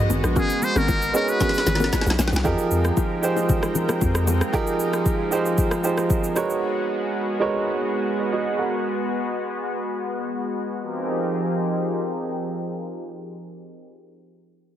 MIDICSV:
0, 0, Header, 1, 8, 480
1, 0, Start_track
1, 0, Key_signature, -4, "minor"
1, 0, Tempo, 521739
1, 333, Time_signature, 4, 2, 24, 8
1, 13585, End_track
2, 0, Start_track
2, 0, Title_t, "Muted trumpet"
2, 0, Program_c, 0, 59
2, 346, Note_on_c, 0, 68, 101
2, 586, Note_on_c, 0, 72, 105
2, 600, Note_off_c, 0, 68, 0
2, 711, Note_on_c, 0, 70, 102
2, 725, Note_off_c, 0, 72, 0
2, 1060, Note_off_c, 0, 70, 0
2, 1067, Note_on_c, 0, 70, 99
2, 1191, Note_on_c, 0, 71, 97
2, 1205, Note_off_c, 0, 70, 0
2, 2019, Note_off_c, 0, 71, 0
2, 13585, End_track
3, 0, Start_track
3, 0, Title_t, "Grand piano"
3, 0, Program_c, 1, 0
3, 0, Control_c, 1, 64, 127
3, 0, Note_on_c, 1, 56, 74
3, 0, Note_on_c, 1, 63, 68
3, 0, Note_on_c, 1, 66, 71
3, 0, Note_on_c, 1, 70, 70
3, 0, Note_on_c, 1, 71, 71
3, 0, Note_on_c, 1, 73, 89
3, 0, Note_on_c, 1, 75, 83
3, 379, Note_off_c, 1, 56, 0
3, 380, Note_off_c, 1, 63, 0
3, 382, Note_off_c, 1, 66, 0
3, 384, Note_off_c, 1, 70, 0
3, 385, Note_off_c, 1, 71, 0
3, 387, Note_off_c, 1, 75, 0
3, 1044, Note_on_c, 1, 56, 76
3, 1048, Note_on_c, 1, 63, 72
3, 1051, Note_on_c, 1, 66, 67
3, 1054, Note_on_c, 1, 68, 69
3, 1058, Note_on_c, 1, 71, 68
3, 1061, Note_off_c, 1, 73, 0
3, 1061, Note_on_c, 1, 73, 86
3, 1818, Note_off_c, 1, 56, 0
3, 1820, Note_off_c, 1, 63, 0
3, 1822, Note_off_c, 1, 66, 0
3, 1824, Note_off_c, 1, 68, 0
3, 1825, Note_off_c, 1, 71, 0
3, 1827, Note_off_c, 1, 73, 0
3, 2244, Note_on_c, 1, 53, 113
3, 2249, Note_on_c, 1, 63, 97
3, 2253, Note_on_c, 1, 67, 102
3, 2257, Note_on_c, 1, 68, 100
3, 2262, Note_on_c, 1, 70, 119
3, 2265, Control_c, 1, 64, 0
3, 2436, Control_c, 1, 64, 127
3, 2828, Note_off_c, 1, 53, 0
3, 2831, Note_off_c, 1, 63, 0
3, 2833, Note_off_c, 1, 67, 0
3, 2835, Note_off_c, 1, 68, 0
3, 2837, Note_off_c, 1, 70, 0
3, 2964, Note_on_c, 1, 53, 88
3, 2968, Note_on_c, 1, 63, 78
3, 2973, Note_on_c, 1, 67, 83
3, 2978, Note_on_c, 1, 68, 79
3, 2982, Note_on_c, 1, 72, 94
3, 3739, Note_off_c, 1, 53, 0
3, 3741, Note_off_c, 1, 63, 0
3, 3743, Note_off_c, 1, 67, 0
3, 3745, Note_off_c, 1, 68, 0
3, 3747, Note_off_c, 1, 72, 0
3, 4164, Note_on_c, 1, 53, 110
3, 4169, Note_on_c, 1, 63, 101
3, 4173, Note_on_c, 1, 67, 106
3, 4177, Note_on_c, 1, 68, 101
3, 4182, Note_on_c, 1, 70, 127
3, 4748, Note_off_c, 1, 53, 0
3, 4751, Note_off_c, 1, 63, 0
3, 4753, Note_off_c, 1, 67, 0
3, 4755, Note_off_c, 1, 68, 0
3, 4757, Note_off_c, 1, 70, 0
3, 4885, Note_on_c, 1, 53, 89
3, 4889, Note_on_c, 1, 63, 81
3, 4894, Note_on_c, 1, 67, 82
3, 4898, Note_on_c, 1, 68, 82
3, 4903, Note_on_c, 1, 72, 97
3, 5277, Note_off_c, 1, 53, 0
3, 5279, Note_off_c, 1, 63, 0
3, 5281, Note_off_c, 1, 67, 0
3, 5283, Note_off_c, 1, 68, 0
3, 5286, Note_off_c, 1, 72, 0
3, 5364, Note_on_c, 1, 53, 81
3, 5369, Note_on_c, 1, 63, 73
3, 5373, Note_on_c, 1, 67, 75
3, 5377, Note_on_c, 1, 68, 73
3, 5382, Note_on_c, 1, 72, 89
3, 5756, Note_off_c, 1, 53, 0
3, 5759, Note_off_c, 1, 63, 0
3, 5761, Note_off_c, 1, 67, 0
3, 5763, Note_off_c, 1, 68, 0
3, 5765, Note_off_c, 1, 72, 0
3, 5845, Note_on_c, 1, 56, 94
3, 5848, Note_on_c, 1, 63, 84
3, 5852, Note_on_c, 1, 66, 83
3, 5856, Note_on_c, 1, 70, 87
3, 5859, Note_on_c, 1, 71, 85
3, 5863, Note_on_c, 1, 73, 99
3, 5865, Control_c, 1, 64, 0
3, 6040, Control_c, 1, 64, 127
3, 6619, Note_off_c, 1, 56, 0
3, 6621, Note_off_c, 1, 63, 0
3, 6623, Note_off_c, 1, 66, 0
3, 6624, Note_off_c, 1, 70, 0
3, 6626, Note_off_c, 1, 71, 0
3, 6628, Note_off_c, 1, 73, 0
3, 6804, Note_on_c, 1, 56, 86
3, 6808, Note_on_c, 1, 63, 79
3, 6811, Note_on_c, 1, 66, 81
3, 6815, Note_on_c, 1, 70, 81
3, 6818, Note_on_c, 1, 71, 84
3, 6822, Note_on_c, 1, 73, 102
3, 7519, Note_off_c, 1, 71, 0
3, 7524, Note_off_c, 1, 63, 0
3, 7532, Note_off_c, 1, 66, 0
3, 7533, Note_on_c, 1, 71, 60
3, 7534, Note_off_c, 1, 70, 0
3, 7537, Note_off_c, 1, 73, 0
3, 7538, Note_on_c, 1, 63, 52
3, 7578, Note_off_c, 1, 56, 0
3, 7651, Note_off_c, 1, 71, 0
3, 7654, Note_off_c, 1, 63, 0
3, 7658, Note_on_c, 1, 75, 72
3, 7663, Note_on_c, 1, 66, 62
3, 7886, Note_off_c, 1, 75, 0
3, 7889, Note_off_c, 1, 66, 0
3, 7897, Note_on_c, 1, 78, 64
3, 7903, Note_on_c, 1, 70, 52
3, 8025, Control_c, 1, 64, 0
3, 8125, Note_off_c, 1, 78, 0
3, 8128, Note_off_c, 1, 70, 0
3, 13585, End_track
4, 0, Start_track
4, 0, Title_t, "Synth pluck"
4, 0, Program_c, 2, 84
4, 330, Note_on_c, 2, 59, 97
4, 332, Note_on_c, 2, 61, 89
4, 334, Note_on_c, 2, 66, 87
4, 336, Note_on_c, 2, 70, 101
4, 666, Note_off_c, 2, 59, 0
4, 667, Note_off_c, 2, 61, 0
4, 668, Note_off_c, 2, 66, 0
4, 669, Note_off_c, 2, 70, 0
4, 695, Note_on_c, 2, 59, 78
4, 697, Note_on_c, 2, 61, 69
4, 698, Note_on_c, 2, 66, 71
4, 700, Note_on_c, 2, 70, 85
4, 793, Note_off_c, 2, 59, 0
4, 794, Note_off_c, 2, 61, 0
4, 794, Note_off_c, 2, 66, 0
4, 796, Note_off_c, 2, 70, 0
4, 1050, Note_on_c, 2, 59, 76
4, 1052, Note_on_c, 2, 61, 71
4, 1053, Note_on_c, 2, 66, 74
4, 1055, Note_on_c, 2, 70, 91
4, 1156, Note_off_c, 2, 59, 0
4, 1157, Note_off_c, 2, 61, 0
4, 1158, Note_off_c, 2, 66, 0
4, 1159, Note_off_c, 2, 70, 0
4, 1290, Note_on_c, 2, 59, 93
4, 1292, Note_on_c, 2, 61, 88
4, 1294, Note_on_c, 2, 66, 89
4, 1296, Note_on_c, 2, 70, 107
4, 1396, Note_off_c, 2, 59, 0
4, 1397, Note_off_c, 2, 61, 0
4, 1398, Note_off_c, 2, 66, 0
4, 1399, Note_off_c, 2, 70, 0
4, 1655, Note_on_c, 2, 59, 80
4, 1656, Note_on_c, 2, 61, 74
4, 1659, Note_on_c, 2, 66, 75
4, 1660, Note_on_c, 2, 70, 84
4, 1753, Note_off_c, 2, 59, 0
4, 1754, Note_off_c, 2, 61, 0
4, 1755, Note_off_c, 2, 66, 0
4, 1755, Note_off_c, 2, 70, 0
4, 13585, End_track
5, 0, Start_track
5, 0, Title_t, "Analog synth pad"
5, 0, Program_c, 3, 89
5, 0, Note_on_c, 3, 56, 83
5, 0, Note_on_c, 3, 59, 77
5, 0, Note_on_c, 3, 66, 93
5, 2216, Note_off_c, 3, 56, 0
5, 2216, Note_off_c, 3, 59, 0
5, 2216, Note_off_c, 3, 66, 0
5, 2253, Note_on_c, 3, 56, 75
5, 2253, Note_on_c, 3, 63, 74
5, 2253, Note_on_c, 3, 70, 86
5, 2253, Note_on_c, 3, 79, 75
5, 2254, Note_on_c, 3, 53, 80
5, 2254, Note_on_c, 3, 60, 71
5, 5817, Note_off_c, 3, 53, 0
5, 5817, Note_off_c, 3, 56, 0
5, 5817, Note_off_c, 3, 60, 0
5, 5817, Note_off_c, 3, 63, 0
5, 5817, Note_off_c, 3, 70, 0
5, 5817, Note_off_c, 3, 79, 0
5, 5853, Note_on_c, 3, 56, 76
5, 5853, Note_on_c, 3, 59, 73
5, 5853, Note_on_c, 3, 66, 89
5, 9896, Note_off_c, 3, 56, 0
5, 9896, Note_off_c, 3, 59, 0
5, 9896, Note_off_c, 3, 66, 0
5, 9933, Note_on_c, 3, 53, 79
5, 9933, Note_on_c, 3, 60, 72
5, 9933, Note_on_c, 3, 63, 72
5, 9933, Note_on_c, 3, 67, 72
5, 9933, Note_on_c, 3, 68, 71
5, 9933, Note_on_c, 3, 70, 88
5, 12739, Note_off_c, 3, 53, 0
5, 12739, Note_off_c, 3, 60, 0
5, 12739, Note_off_c, 3, 63, 0
5, 12739, Note_off_c, 3, 67, 0
5, 12739, Note_off_c, 3, 68, 0
5, 12739, Note_off_c, 3, 70, 0
5, 13585, End_track
6, 0, Start_track
6, 0, Title_t, "Sub bass"
6, 0, Program_c, 4, 38
6, 2253, Note_on_c, 4, 41, 99
6, 2349, Note_off_c, 4, 41, 0
6, 2493, Note_on_c, 4, 41, 88
6, 2677, Note_off_c, 4, 41, 0
6, 3694, Note_on_c, 4, 41, 93
6, 4062, Note_off_c, 4, 41, 0
6, 13585, End_track
7, 0, Start_track
7, 0, Title_t, "Log drum bass"
7, 0, Program_c, 5, 39
7, 93, Note_on_c, 5, 32, 92
7, 209, Note_off_c, 5, 32, 0
7, 218, Note_on_c, 5, 34, 89
7, 325, Note_off_c, 5, 34, 0
7, 697, Note_on_c, 5, 32, 95
7, 1027, Note_off_c, 5, 32, 0
7, 1533, Note_on_c, 5, 32, 86
7, 1756, Note_off_c, 5, 32, 0
7, 1898, Note_on_c, 5, 35, 94
7, 2005, Note_off_c, 5, 35, 0
7, 2013, Note_on_c, 5, 34, 94
7, 2129, Note_off_c, 5, 34, 0
7, 2138, Note_on_c, 5, 36, 88
7, 2245, Note_off_c, 5, 36, 0
7, 13585, End_track
8, 0, Start_track
8, 0, Title_t, "Drums"
8, 92, Note_on_c, 9, 61, 85
8, 94, Note_on_c, 9, 82, 94
8, 184, Note_off_c, 9, 61, 0
8, 186, Note_off_c, 9, 82, 0
8, 220, Note_on_c, 9, 37, 94
8, 220, Note_on_c, 9, 82, 45
8, 312, Note_off_c, 9, 37, 0
8, 312, Note_off_c, 9, 82, 0
8, 328, Note_on_c, 9, 64, 71
8, 333, Note_on_c, 9, 36, 114
8, 334, Note_on_c, 9, 82, 59
8, 420, Note_off_c, 9, 64, 0
8, 425, Note_off_c, 9, 36, 0
8, 426, Note_off_c, 9, 82, 0
8, 457, Note_on_c, 9, 82, 55
8, 549, Note_off_c, 9, 82, 0
8, 569, Note_on_c, 9, 61, 51
8, 574, Note_on_c, 9, 82, 78
8, 661, Note_off_c, 9, 61, 0
8, 666, Note_off_c, 9, 82, 0
8, 699, Note_on_c, 9, 82, 47
8, 700, Note_on_c, 9, 37, 91
8, 791, Note_off_c, 9, 82, 0
8, 792, Note_off_c, 9, 37, 0
8, 813, Note_on_c, 9, 36, 96
8, 813, Note_on_c, 9, 60, 74
8, 813, Note_on_c, 9, 82, 67
8, 905, Note_off_c, 9, 36, 0
8, 905, Note_off_c, 9, 60, 0
8, 905, Note_off_c, 9, 82, 0
8, 940, Note_on_c, 9, 82, 58
8, 1032, Note_off_c, 9, 82, 0
8, 1055, Note_on_c, 9, 82, 86
8, 1147, Note_off_c, 9, 82, 0
8, 1179, Note_on_c, 9, 82, 49
8, 1271, Note_off_c, 9, 82, 0
8, 1293, Note_on_c, 9, 38, 61
8, 1293, Note_on_c, 9, 82, 82
8, 1294, Note_on_c, 9, 36, 102
8, 1296, Note_on_c, 9, 64, 71
8, 1373, Note_off_c, 9, 38, 0
8, 1373, Note_on_c, 9, 38, 55
8, 1385, Note_off_c, 9, 82, 0
8, 1386, Note_off_c, 9, 36, 0
8, 1388, Note_off_c, 9, 64, 0
8, 1418, Note_on_c, 9, 82, 43
8, 1453, Note_off_c, 9, 38, 0
8, 1453, Note_on_c, 9, 38, 66
8, 1510, Note_off_c, 9, 82, 0
8, 1531, Note_on_c, 9, 64, 73
8, 1533, Note_off_c, 9, 38, 0
8, 1533, Note_on_c, 9, 38, 60
8, 1534, Note_on_c, 9, 82, 92
8, 1613, Note_off_c, 9, 38, 0
8, 1613, Note_on_c, 9, 38, 77
8, 1623, Note_off_c, 9, 64, 0
8, 1626, Note_off_c, 9, 82, 0
8, 1657, Note_on_c, 9, 61, 80
8, 1658, Note_on_c, 9, 82, 50
8, 1693, Note_off_c, 9, 38, 0
8, 1693, Note_on_c, 9, 38, 67
8, 1749, Note_off_c, 9, 61, 0
8, 1750, Note_off_c, 9, 82, 0
8, 1773, Note_off_c, 9, 38, 0
8, 1773, Note_on_c, 9, 36, 90
8, 1773, Note_on_c, 9, 38, 82
8, 1773, Note_on_c, 9, 60, 72
8, 1773, Note_on_c, 9, 82, 81
8, 1853, Note_off_c, 9, 38, 0
8, 1853, Note_on_c, 9, 38, 75
8, 1865, Note_off_c, 9, 36, 0
8, 1865, Note_off_c, 9, 60, 0
8, 1865, Note_off_c, 9, 82, 0
8, 1898, Note_on_c, 9, 82, 57
8, 1933, Note_off_c, 9, 38, 0
8, 1933, Note_on_c, 9, 38, 94
8, 1990, Note_off_c, 9, 82, 0
8, 2012, Note_on_c, 9, 61, 78
8, 2013, Note_off_c, 9, 38, 0
8, 2013, Note_on_c, 9, 38, 84
8, 2014, Note_on_c, 9, 82, 93
8, 2094, Note_off_c, 9, 38, 0
8, 2094, Note_on_c, 9, 38, 101
8, 2104, Note_off_c, 9, 61, 0
8, 2106, Note_off_c, 9, 82, 0
8, 2140, Note_on_c, 9, 82, 45
8, 2174, Note_off_c, 9, 38, 0
8, 2174, Note_on_c, 9, 38, 95
8, 2232, Note_off_c, 9, 82, 0
8, 2248, Note_on_c, 9, 64, 70
8, 2253, Note_on_c, 9, 36, 109
8, 2253, Note_on_c, 9, 82, 58
8, 2266, Note_off_c, 9, 38, 0
8, 2340, Note_off_c, 9, 64, 0
8, 2345, Note_off_c, 9, 36, 0
8, 2345, Note_off_c, 9, 82, 0
8, 2377, Note_on_c, 9, 82, 52
8, 2469, Note_off_c, 9, 82, 0
8, 2493, Note_on_c, 9, 82, 76
8, 2585, Note_off_c, 9, 82, 0
8, 2619, Note_on_c, 9, 82, 44
8, 2620, Note_on_c, 9, 37, 94
8, 2711, Note_off_c, 9, 82, 0
8, 2712, Note_off_c, 9, 37, 0
8, 2732, Note_on_c, 9, 60, 71
8, 2733, Note_on_c, 9, 82, 67
8, 2734, Note_on_c, 9, 36, 89
8, 2824, Note_off_c, 9, 60, 0
8, 2825, Note_off_c, 9, 82, 0
8, 2826, Note_off_c, 9, 36, 0
8, 2975, Note_on_c, 9, 82, 86
8, 3067, Note_off_c, 9, 82, 0
8, 3095, Note_on_c, 9, 60, 57
8, 3099, Note_on_c, 9, 82, 46
8, 3187, Note_off_c, 9, 60, 0
8, 3191, Note_off_c, 9, 82, 0
8, 3213, Note_on_c, 9, 82, 80
8, 3214, Note_on_c, 9, 36, 106
8, 3215, Note_on_c, 9, 64, 72
8, 3305, Note_off_c, 9, 82, 0
8, 3306, Note_off_c, 9, 36, 0
8, 3307, Note_off_c, 9, 64, 0
8, 3337, Note_on_c, 9, 37, 93
8, 3338, Note_on_c, 9, 82, 44
8, 3429, Note_off_c, 9, 37, 0
8, 3430, Note_off_c, 9, 82, 0
8, 3451, Note_on_c, 9, 64, 75
8, 3454, Note_on_c, 9, 82, 88
8, 3543, Note_off_c, 9, 64, 0
8, 3546, Note_off_c, 9, 82, 0
8, 3577, Note_on_c, 9, 61, 76
8, 3578, Note_on_c, 9, 82, 51
8, 3579, Note_on_c, 9, 37, 86
8, 3669, Note_off_c, 9, 61, 0
8, 3670, Note_off_c, 9, 82, 0
8, 3671, Note_off_c, 9, 37, 0
8, 3693, Note_on_c, 9, 60, 70
8, 3693, Note_on_c, 9, 82, 78
8, 3694, Note_on_c, 9, 36, 90
8, 3785, Note_off_c, 9, 60, 0
8, 3785, Note_off_c, 9, 82, 0
8, 3786, Note_off_c, 9, 36, 0
8, 3818, Note_on_c, 9, 37, 93
8, 3818, Note_on_c, 9, 82, 54
8, 3910, Note_off_c, 9, 37, 0
8, 3910, Note_off_c, 9, 82, 0
8, 3932, Note_on_c, 9, 61, 79
8, 3934, Note_on_c, 9, 82, 97
8, 4024, Note_off_c, 9, 61, 0
8, 4026, Note_off_c, 9, 82, 0
8, 4059, Note_on_c, 9, 37, 92
8, 4059, Note_on_c, 9, 82, 43
8, 4151, Note_off_c, 9, 37, 0
8, 4151, Note_off_c, 9, 82, 0
8, 4173, Note_on_c, 9, 36, 109
8, 4173, Note_on_c, 9, 82, 55
8, 4265, Note_off_c, 9, 36, 0
8, 4265, Note_off_c, 9, 82, 0
8, 4296, Note_on_c, 9, 82, 53
8, 4388, Note_off_c, 9, 82, 0
8, 4413, Note_on_c, 9, 82, 72
8, 4505, Note_off_c, 9, 82, 0
8, 4538, Note_on_c, 9, 82, 44
8, 4540, Note_on_c, 9, 37, 89
8, 4630, Note_off_c, 9, 82, 0
8, 4632, Note_off_c, 9, 37, 0
8, 4652, Note_on_c, 9, 82, 65
8, 4653, Note_on_c, 9, 36, 89
8, 4744, Note_off_c, 9, 82, 0
8, 4745, Note_off_c, 9, 36, 0
8, 4895, Note_on_c, 9, 82, 90
8, 4987, Note_off_c, 9, 82, 0
8, 5019, Note_on_c, 9, 82, 45
8, 5111, Note_off_c, 9, 82, 0
8, 5132, Note_on_c, 9, 82, 80
8, 5134, Note_on_c, 9, 36, 103
8, 5224, Note_off_c, 9, 82, 0
8, 5226, Note_off_c, 9, 36, 0
8, 5256, Note_on_c, 9, 37, 93
8, 5258, Note_on_c, 9, 82, 44
8, 5348, Note_off_c, 9, 37, 0
8, 5350, Note_off_c, 9, 82, 0
8, 5373, Note_on_c, 9, 82, 92
8, 5465, Note_off_c, 9, 82, 0
8, 5498, Note_on_c, 9, 37, 86
8, 5498, Note_on_c, 9, 82, 49
8, 5590, Note_off_c, 9, 37, 0
8, 5590, Note_off_c, 9, 82, 0
8, 5613, Note_on_c, 9, 82, 76
8, 5614, Note_on_c, 9, 36, 92
8, 5705, Note_off_c, 9, 82, 0
8, 5706, Note_off_c, 9, 36, 0
8, 5738, Note_on_c, 9, 82, 53
8, 5830, Note_off_c, 9, 82, 0
8, 5854, Note_on_c, 9, 82, 96
8, 5855, Note_on_c, 9, 37, 86
8, 5946, Note_off_c, 9, 82, 0
8, 5947, Note_off_c, 9, 37, 0
8, 5979, Note_on_c, 9, 82, 45
8, 6071, Note_off_c, 9, 82, 0
8, 13585, End_track
0, 0, End_of_file